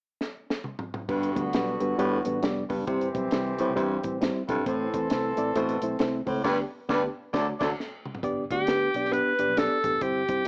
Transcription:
0.21 snare
0.50 snare
0.64 mid tom
0.79 floor tom
0.94 floor tom
1.09 G1 G2 D3 G3 B3 D4 F#4 B4, kick, crash
1.23 closed hi-hat
1.35 D2 G3 B3 D4 B4, kick, closed hi-hat
1.53 B1 G3 B3 D4 B4, snare, closed hi-hat
1.80 G1 G3 B3 D4 B4, closed hi-hat
1.98 G1 A2 G3 B3 D4 B4, closed hi-hat
2.25 A1 G3 B3 D4 B4, closed hi-hat
2.42 F1 G3 B3 D4 D5, snare, closed hi-hat
2.69 F#1 G2 G3 B3 D4 B4, kick, open hi-hat
2.87 G1 C3 E3 G3 C4 E4 G4 C5, kick, closed hi-hat
3.01 closed hi-hat
3.14 B1 G3 C4 E4 C5, kick, closed hi-hat
3.31 C2 G3 C4 E4 C5, snare, closed hi-hat
3.59 A2 G3 C4 E4 C5, closed hi-hat
3.69 C2
3.76 E2 G2 G3 C4 E4 C5, kick, closed hi-hat
4.03 A1 G3 C4 E4 C5, kick, closed hi-hat
4.21 G3 C4 E4 C5, snare, closed hi-hat
4.48 B1 G2 G3 C4 E4 A4, kick, closed hi-hat
4.58 G#1
4.65 A1 A2 E3 A3 C4 E4 A4 C5, kick, closed hi-hat
4.94 E2 A3 C4 E4 C5, kick, closed hi-hat
5.10 C2 A3 C4 E4 C5, snare, closed hi-hat
5.37 A1 A3 C4 E4 D5, closed hi-hat
5.55 A1 B2 A3 C4 E4 C5, closed hi-hat
5.69 closed hi-hat
5.82 B1 A3 C4 E4 C5, closed hi-hat
5.99 C2 A3 C4 E4 C5, snare, closed hi-hat
6.27 C#2 A2 A3 C4 E4 C5, kick, open hi-hat
6.44 D2 G2 G3 B3 D4 G4 B4 D5, kick, snare, crash
6.89 D2 G2 G3 B3 D4 G4 B4, kick, snare
7.33 D2 F#3 A3 D4 F#4 A4 D5, kick, snare
7.60 D2 F#3 A3 D4 F#4 A4 D5, kick, snare, crash
7.80 snare
8.06 mid tom
8.15 floor tom
8.23 G1 B3 D4 G4 D5, kick, closed hi-hat
8.51 D2 B3 D4 G4 D5, kick, closed hi-hat
8.67 B3 D4 G4 B4, snare, closed hi-hat
8.94 B1 B3 D4 G4 D5, closed hi-hat
9.05 snare
9.11 B3 D4 G4 B4, closed hi-hat
9.39 G1 B3 D4 G4 D5, closed hi-hat
9.48 B1
9.56 B3 D4 G4 A4 D5, snare, closed hi-hat
9.84 A1 B3 D4 G4 A4, kick, closed hi-hat
9.93 F#1
10.01 G1 G3 C4 E4 G4 C5, kick, closed hi-hat
10.28 G2 G3 C4 E4 C5, kick, closed hi-hat

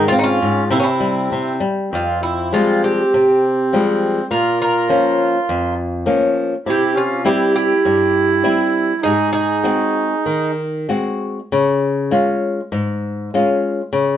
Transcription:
Already playing: G#2
0.07 C4 F4
0.12 C4
0.17 C4 D#4
0.21 C#4 F4
0.42 G#2
0.68 C3 C4 E4
0.74 A#3
0.78 C4 C#4
0.84 E4
1.00 G3
1.32 C3
1.60 G3
1.91 F2 C4
1.95 F4
2.20 C4 E4
2.51 F3 G3 G#3 C4 F4
2.82 C4 G4
3.14 C3
3.73 F3 G3 G#3
4.31 A#2 F4 A#4
4.61 F4 A#4
4.89 F3 A#3 C#4
5.49 F2
6.06 F3 A#3 C#4
6.66 C3 E4 G4
6.94 C#4 F4
7.25 G3 C4 E4 G4
7.54 E4 G4
7.85 G2
8.44 G3 C4 E4
9.02 G#2 D#4 G#4
9.32 D#4 G#4
9.64 G#3 C4 F#4
10.26 D#3
10.89 G#3 C4 F#4
11.52 C#3
12.11 G#3 C#4 F4
12.72 G#2
13.34 G#3 C#4 F4
13.93 C#3

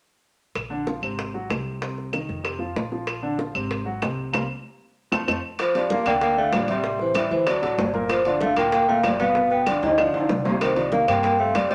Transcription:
0.55 A#1, high bongo, claves
0.70 D3 D4
0.87 F3 F4, high bongo
1.02 G#1 C3 C4, claves
1.19 high bongo
1.34 F#3 F#4
1.49 C2 C3 C4, high bongo, low bongo, claves
1.81 C3 C4, high bongo
1.98 high bongo
2.13 D#3 D#4, high bongo, claves
2.29 F2, high bongo
2.44 C3 C4, high bongo, claves
2.59 F3 F4
2.76 A#1, high bongo, low bongo
2.92 F3 F4, high bongo
3.07 high bongo, claves
3.22 D3 D4
3.38 F3 F4, high bongo
3.55 G#1 C3 C4, claves
3.71 high bongo
3.85 F#3 F#4
4.02 C2 C3 C4, high bongo, low bongo, claves
4.33 C2 G3 A#3 C4, low bongo, claves
5.12 F2 F3 A3 C4, low bongo, claves
5.28 F2 F3 A3 C4, low bongo, claves
5.59 F3 C5, high bongo, high conga, high timbale, claves
5.74 F3 F4 G4 D5, high conga, high timbale
5.90 F3 A#3 F4 G4 F5, high bongo, high conga
6.06 D2 D3 A#3 D4 D5 G5, high conga, high timbale, claves
6.21 A#3 G5, high bongo, high conga, high timbale
6.37 D3 A3 D4 D5 F5, high conga
6.52 A1 F3 D5, high bongo, low bongo, high conga, high timbale, low timbale, claves
6.68 C3 G3 C4 C5 E5, high conga, high timbale
6.84 C3 C4 C5, high bongo, high conga
6.99 E3 C5, high bongo, high conga
7.14 E3 G3 E4 G4 E5, high bongo, high conga, high timbale, claves
7.31 D2 E3 C5, high bongo, high conga
7.46 F#3 F#4 A4 D5, high bongo, high conga, high timbale, claves
7.62 A1 F#3 F#4 A4, high conga, high timbale
7.78 G1, high bongo, low bongo, high conga, low timbale
7.93 A#2 A#3 A#4, high bongo, high conga
8.10 F3 C5, high bongo, high conga, high timbale, claves
8.25 D3 F3 D4 F4 D5, high conga, high timbale
8.41 D3 A3 D4 F4 F5, high bongo, high conga
8.56 D2 A#2 A#3 A#4 G5, high conga, high timbale, claves
8.72 A#3 G5, high bongo, high conga, high timbale
8.88 A#2 A3 A#3 A#4 F5, high conga
9.03 G1 F3 D5, high bongo, low bongo, high conga, high timbale, low timbale, claves
9.19 B2 B3 B4 F5, high conga, high timbale
9.35 B2 B3 B4, high bongo, high conga
9.50 B3 G5, high bongo, high conga
9.66 D3 F3 D4 F4 D5, high bongo, high conga, high timbale, claves
9.82 D2 G3 D#5, high bongo, high conga, high timbale
9.98 D3 F3 D4 F4 D5, high bongo, high conga, claves
10.12 D2 D3 D4 F4, high conga, high timbale
10.29 C2, high bongo, low bongo, high conga
10.45 C3 C4 C5, high bongo, high conga, low timbale
10.61 D#3 C5, high bongo, high conga, high timbale, claves
10.76 D#3 F3 D#4 G4 D5, high conga, high timbale
10.91 D#3 A#3 D#4 G4 F5, high bongo, high conga
11.07 G2 C3 A#3 C4 C5 G5, high conga, high timbale, claves
11.23 A#3 G5, high bongo, high conga, high timbale
11.39 C3 A3 C4 C5 F5, high conga
11.54 F2 G3 D5, high bongo, low bongo, high conga, high timbale, claves
11.69 C3 G3 C4 C5 D#5, high conga, high timbale

